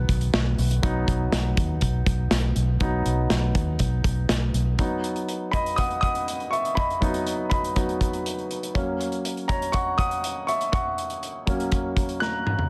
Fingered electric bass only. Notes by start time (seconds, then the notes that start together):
0.09 B1
0.34 B1
0.58 B1
1.08 B1
1.32 B1
1.57 D#2
1.82 B1
2.06 B1
2.31 B1
2.56 B1
3.06 B1
3.31 B1
3.55 D#2
3.80 B1
4.05 B1
4.30 B1
4.54 B1